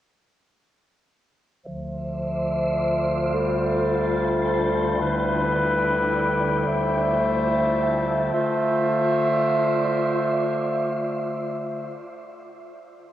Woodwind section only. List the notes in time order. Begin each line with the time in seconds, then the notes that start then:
1.67 D2 D3 F3 C5 E5
3.33 G3 F4 A4
5.00 D3 E4 B4
6.67 D2 A3 C5 E5
8.34 D3 A3 F4 C5 E5